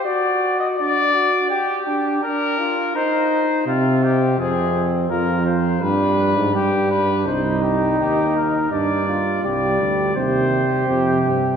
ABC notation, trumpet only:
X:1
M:4/4
L:1/16
Q:1/4=83
K:Cm
V:1 name="Trumpet"
d3 e d4 G4 B4 | c4 F2 G2 A3 z B2 c2 | =B4 G2 B2 c2 G2 G2 _B2 | d4 d4 c6 z2 |]